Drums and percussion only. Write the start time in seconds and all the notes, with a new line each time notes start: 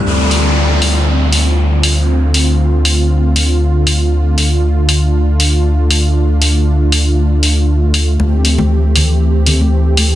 0.31 open hi-hat
0.82 open hi-hat
1.32 open hi-hat
1.83 open hi-hat
2.34 open hi-hat
2.85 open hi-hat
3.36 open hi-hat
3.87 open hi-hat
4.38 open hi-hat
4.89 open hi-hat
5.40 open hi-hat
5.91 open hi-hat
6.42 open hi-hat
6.92 open hi-hat
7.43 open hi-hat
7.94 open hi-hat
8.20 high conga
8.45 open hi-hat
8.58 high conga, low conga
8.96 open hi-hat, low conga
9.46 open hi-hat, low conga
9.61 high conga
9.97 open hi-hat, high conga